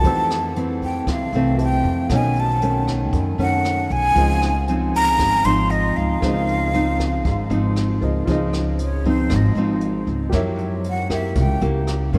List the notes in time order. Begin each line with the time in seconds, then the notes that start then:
Already playing: A5
0.01 F2 E3 G4 A4, kick, closed hi-hat
0.05 A3 C4 C5 E6
0.30 cross-stick, closed hi-hat
0.56 E3 A3 C4, closed hi-hat
0.81 G5, kick, closed hi-hat
1.07 C2 C3 F5, kick, cross-stick, closed hi-hat
1.33 C2 E3 A3 C4, closed hi-hat
1.57 G4 A4 C5 E5, closed hi-hat
1.63 G5
1.84 F2, kick, closed hi-hat
2.08 B1 B2 D#3 F#4 A4, kick, cross-stick, closed hi-hat
2.12 A3 C#4 C#5 D#5 G#5
2.35 closed hi-hat
2.40 A5
2.62 D#3 A3 C#4, closed hi-hat
2.87 kick, cross-stick, closed hi-hat
3.13 F#2, kick, closed hi-hat
3.38 F#2 D#3 A3 C#4 F#5, closed hi-hat
3.65 cross-stick, closed hi-hat
3.90 B1 G#5, kick, closed hi-hat
4.14 C#2 C#3 F3 C4 D#4 F4 G#4 C5, kick, closed hi-hat
4.20 D#5
4.42 cross-stick, closed hi-hat
4.68 F3 C4 D#4, closed hi-hat
4.93 A#5, kick, closed hi-hat
5.19 G#1 G#2, kick, cross-stick, closed hi-hat
5.44 G#1 F3 C4 D#4 C6, closed hi-hat
5.70 D#5, closed hi-hat
5.96 C#2 F5, kick, closed hi-hat
6.20 C#2 C#3 F3 C4 D#4 F4 G#4, kick, cross-stick, closed hi-hat
6.24 C5 D#5
6.49 closed hi-hat
6.74 F3 C4 D#4, closed hi-hat
7.00 kick, cross-stick, closed hi-hat
7.25 G#1 G#2, kick, closed hi-hat
7.50 G#1 F3 C4 D#4, closed hi-hat
7.76 cross-stick, closed hi-hat
8.01 C#2 F4 G#4 C5 D#5, kick, closed hi-hat
8.25 C#2 C#3 F3 C4 D#4 F4 G#4 C5, kick, closed hi-hat
8.31 D#5
8.53 cross-stick, closed hi-hat
8.79 closed hi-hat
8.83 C#5
9.05 F3 C4 D#4, kick, closed hi-hat
9.09 C5
9.30 G#1 G#2, kick, cross-stick, closed hi-hat
9.36 D#5
9.55 G#1 F3 C4 D#4, closed hi-hat
9.81 closed hi-hat
10.07 C#2, kick, closed hi-hat
10.29 F#2 F#3 A#3 E4 G4 A#4, kick, cross-stick, closed hi-hat
10.34 G4 C#5 E5
10.58 closed hi-hat
10.84 closed hi-hat
10.89 F#5
11.10 A#3 E4 G4 E5, kick, cross-stick, closed hi-hat
11.35 C#2 C#3, kick, closed hi-hat
11.41 G5
11.61 C#2 A#3 E4 G4, closed hi-hat
11.87 cross-stick, closed hi-hat
12.13 F#2 D#3 A#3 C#4, kick, closed hi-hat